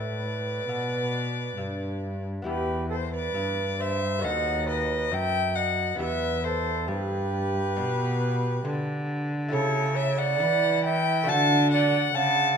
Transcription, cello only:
0.00 0.67 A2 medium
0.69 1.56 B2 medium
1.58 2.45 G2 medium
2.47 3.34 E2 medium
3.36 4.25 G2 medium
4.24 5.13 D#2 loud
5.12 5.98 F#2 medium
5.99 6.89 E2 medium
6.88 7.78 G2 medium
7.77 8.65 B2 loud
8.65 9.54 D3 medium
9.53 10.42 C#3 loud
10.40 11.30 E3 medium
11.28 12.14 D3 loud
12.15 12.57 C#3 medium

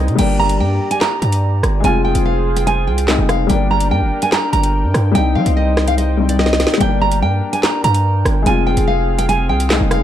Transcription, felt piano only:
0.00 0.15 G3 medium
0.00 0.20 C4 medium
0.00 0.21 D#4 medium
0.15 1.79 G3 medium
0.15 1.81 A#3 medium
0.22 1.82 D4 medium
1.80 3.04 G#3 medium
1.80 3.05 C4 medium
1.86 3.07 F4 medium
3.07 3.49 G#3 medium
3.07 3.50 C4 soft
3.07 3.51 D#4 medium
3.47 5.10 G3 medium
3.47 5.12 A#3 medium
3.53 5.14 D4 medium
5.12 6.15 G3 medium
5.12 6.16 C4 medium
5.18 6.18 D#4 medium
6.17 6.76 G3 medium
6.17 6.81 C4 soft
6.17 6.81 D#4 medium
6.77 8.41 G3 medium
6.77 8.43 A#3 medium
6.84 8.44 D4 medium
8.42 9.66 G#3 medium
8.42 9.67 C4 medium
8.49 9.69 F4 medium
9.69 10.03 G#3 medium
9.69 10.03 C4 medium
9.69 10.03 D#4 medium

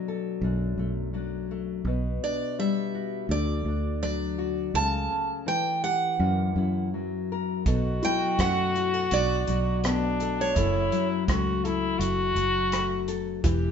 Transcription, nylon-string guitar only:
0.00 0.42 B2 medium
0.00 1.12 F#3 medium
0.00 0.78 A3 medium
0.00 0.44 D4 medium
0.08 1.82 A4 medium
0.43 1.86 F#2 medium
0.43 1.13 D4 medium
0.79 1.50 A3 medium
1.13 1.81 F#3 medium
1.13 1.81 D4 soft
1.51 1.86 A3 medium
1.87 3.30 B2 medium
1.87 3.26 B3 medium
2.24 3.26 D4 medium
2.59 3.26 G3 medium
2.95 4.37 F#4 medium
3.30 4.70 D3 medium
3.30 4.74 A3 medium
3.68 4.71 D4 medium
4.02 4.70 F#3 medium
4.39 4.74 F#4 medium
4.74 5.47 C#3 medium
4.74 6.20 A3 medium
5.11 6.57 C#4 medium
5.46 6.93 E3 medium
5.84 6.15 G4 medium
6.19 7.66 F#2 medium
6.19 7.62 A#3 medium
6.57 7.62 E4 medium
6.94 7.62 F#3 medium
7.32 7.63 A#4 medium
7.67 10.57 B2 medium
7.67 8.76 A4 medium
8.04 9.46 F#3 medium
8.40 9.83 A3 medium
8.76 8.94 F#4 medium
8.94 10.20 A4 medium
9.12 10.52 D4 medium
9.47 10.52 F#3 medium
9.85 11.29 A3 medium
10.21 10.53 A4 medium
10.57 13.45 F#2 medium
10.57 11.64 A4 medium
10.92 12.35 F#3 medium
11.30 12.71 A3 medium
11.65 13.07 A4 medium
12.01 13.71 E4 medium
12.36 13.40 F#3 medium
12.72 13.44 A3 medium
13.08 13.40 A4 medium
13.44 13.71 E3 medium
13.44 13.71 G4 medium

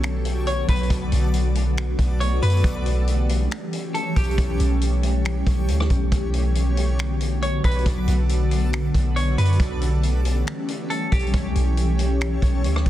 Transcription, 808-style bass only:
0.00 0.64 B1 loud
0.69 0.89 B1 loud
0.90 1.11 B1 loud
1.12 1.95 B1 loud
1.99 2.41 B1 loud
2.42 2.63 F#2 loud
2.64 3.48 B1 loud
4.16 4.37 B1 loud
4.38 4.59 B1 loud
4.60 5.43 B1 loud
5.47 5.70 B1 loud
5.68 5.89 D2 loud
5.90 6.11 B1 loud
6.12 7.60 B1 loud
7.64 7.85 B1 loud
7.86 8.07 B1 loud
8.08 8.91 B1 loud
8.94 9.36 B1 loud
9.38 9.59 F#2 loud
9.60 10.43 B1 loud
11.12 11.33 B1 loud
11.34 11.55 B1 loud
11.55 12.39 B1 loud
12.42 12.66 B1 loud
12.64 12.85 D2 loud
12.86 12.90 B1 loud

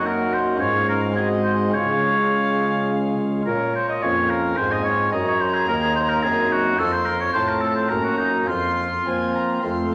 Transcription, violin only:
0.06 0.58 F#5 soft
0.59 1.17 F5 medium
1.15 1.75 D#5 soft
1.74 3.27 F5 soft
3.46 4.04 C#5 soft
4.03 4.57 F5 medium
4.58 5.13 G#5 medium
5.12 6.77 A#5 medium
6.79 7.36 C6 medium
7.35 7.91 A5 medium
7.90 8.48 A#5 medium
8.48 9.00 C6 medium
9.07 9.36 G#5 medium
9.35 9.63 A#5 soft
9.62 9.92 C6 soft

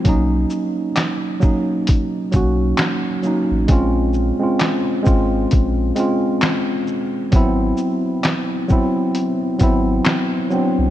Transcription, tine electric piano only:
0.04 0.90 F#3 loud
0.04 0.91 A#3 medium
0.04 0.92 C#4 loud
0.09 0.92 D#4 loud
1.40 1.99 F#3 loud
1.40 1.99 A#3 medium
1.40 2.00 C#4 medium
1.45 2.01 D#4 medium
2.32 2.90 F#3 medium
2.32 2.91 A#3 medium
2.32 2.91 C#4 medium
2.36 2.92 F#4 medium
3.23 3.54 F#3 medium
3.23 3.55 A#3 medium
3.23 3.55 C#4 medium
3.27 3.56 D#4 medium
3.68 4.11 G#3 medium
3.68 4.12 C4 medium
3.68 4.12 C#4 medium
3.72 4.13 F4 loud
4.39 4.81 G#3 medium
4.39 4.82 C4 medium
4.39 4.83 C#4 medium
4.43 4.84 F4 medium
5.02 5.62 G#3 medium
5.02 5.62 C4 medium
5.02 5.63 C#4 medium
5.07 5.64 F4 medium
5.95 6.81 G#3 medium
5.95 6.82 C4 medium
5.95 6.82 C#4 medium
5.99 6.83 F4 medium
7.32 8.17 F#3 loud
7.32 8.18 B3 medium
7.32 8.19 C4 medium
7.36 8.19 E4 loud
8.68 9.26 F#3 medium
8.68 9.27 B3 medium
8.68 9.28 C4 medium
8.72 9.28 E4 loud
9.59 10.17 F#3 medium
9.59 10.18 B3 medium
9.59 10.19 C4 medium
9.63 10.19 E4 loud
10.50 10.81 F#3 medium
10.50 10.82 B3 medium
10.50 10.83 C4 medium
10.55 10.83 D4 medium

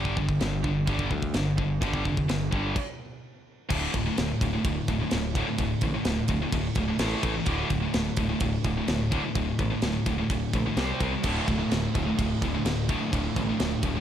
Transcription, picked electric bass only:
0.00 0.39 G1 medium
0.41 0.86 G1 medium
0.88 1.10 G1 medium
1.11 1.34 D2 medium
1.34 1.57 G1 loud
1.59 1.81 G1 medium
1.82 2.05 G1 loud
2.06 2.28 F1 medium
2.30 2.52 G1 medium
2.53 2.75 G1 medium
3.71 3.85 D1 loud
3.94 4.08 D1 medium
4.19 4.32 D1 medium
4.42 4.56 D1 medium
4.65 4.79 D1 medium
4.89 5.03 D1 medium
5.13 5.41 D1 loud
5.59 5.73 D1 loud
5.82 5.96 A1 medium
6.06 6.20 D1 medium
6.29 6.43 D1 medium
6.53 6.67 D1 loud
6.76 6.90 D1 medium
6.99 7.14 A1 loud
7.23 7.38 A1 loud
7.47 7.61 D1 loud
7.71 7.85 D1 medium
7.95 8.09 D1 medium
8.18 8.32 D1 medium
8.41 8.55 D1 medium
8.65 8.79 D1 loud
8.89 9.17 D1 loud
9.36 9.50 D1 medium
9.59 9.73 A1 medium
9.83 9.97 D1 medium
10.07 10.21 D1 medium
10.30 10.44 D1 medium
10.54 10.68 A#1 medium
10.77 10.91 C2 loud
11.01 11.15 C2 medium
11.24 11.38 D1 medium
11.49 11.62 D1 medium
11.72 11.86 D1 medium
11.96 12.10 D1 medium
12.19 12.33 D1 medium
12.43 12.57 D1 medium
12.65 12.94 D1 loud
13.13 13.27 D1 loud
13.36 13.50 A1 medium
13.61 13.74 D1 medium
13.84 13.98 D1 medium

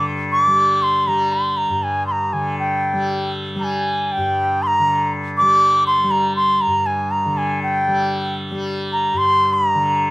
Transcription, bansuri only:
0.32 0.84 D6 loud
0.83 1.09 C6 medium
1.08 1.34 A#5 medium
1.33 1.59 C6 medium
1.57 1.85 A#5 medium
1.83 2.06 G#5 medium
2.07 2.13 C6 medium
2.12 2.34 A#5 medium
2.33 2.58 G#5 medium
2.59 3.31 G5 medium
3.60 3.65 A#5 medium
3.64 4.13 G#5 medium
4.12 4.64 G5 medium
4.63 4.68 C6 medium
4.67 5.12 A#5 medium
5.37 5.84 D6 medium
5.87 6.12 C6 medium
6.11 6.35 A#5 medium
6.36 6.63 C6 medium
6.61 6.88 A#5 medium
6.86 7.13 G#5 medium
7.11 7.39 A#5 medium
7.37 7.62 G#5 medium
7.63 8.36 G5 medium
8.92 9.19 A#5 medium
9.18 9.55 C6 loud
9.53 9.68 B5 medium
9.68 10.11 A#5 medium

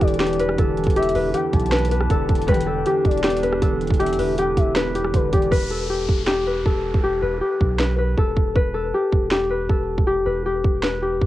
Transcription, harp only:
0.00 0.19 G4 medium
0.00 0.58 A4 medium
0.00 0.39 B4 loud
0.19 0.96 G4 loud
0.40 1.14 B4 medium
0.58 2.10 A4 medium
0.96 1.33 G4 loud
1.15 1.71 B4 medium
1.34 2.86 G4 medium
1.72 1.91 B4 medium
1.91 2.48 B4 medium
2.11 2.66 A4 medium
2.48 3.42 B4 loud
2.66 3.61 A4 medium
2.86 3.23 G4 medium
3.24 3.99 G4 loud
3.43 4.18 B4 medium
3.62 5.70 A4 medium
3.99 4.38 G4 loud
4.18 4.75 B4 medium
4.38 4.95 G4 medium
4.76 5.51 B4 loud
4.95 5.33 G4 medium
5.33 5.89 G4 medium
5.51 6.46 B4 loud
5.71 6.65 A4 medium
5.90 6.26 G4 medium
6.27 7.03 G4 loud
6.47 7.21 B4 medium
6.66 8.18 A4 medium
7.03 7.41 G4 loud
7.22 7.79 B4 medium
7.41 8.94 G4 medium
7.79 7.98 B4 medium
7.98 8.55 B4 medium
8.18 8.74 A4 medium
8.56 9.50 B4 loud
8.74 9.69 A4 medium
8.94 9.31 G4 medium
9.32 10.07 G4 loud
9.50 10.25 B4 medium
9.70 11.26 A4 medium
10.07 10.45 G4 loud
10.26 10.83 B4 medium
10.46 11.02 G4 medium
10.83 11.26 B4 loud
11.02 11.26 G4 medium

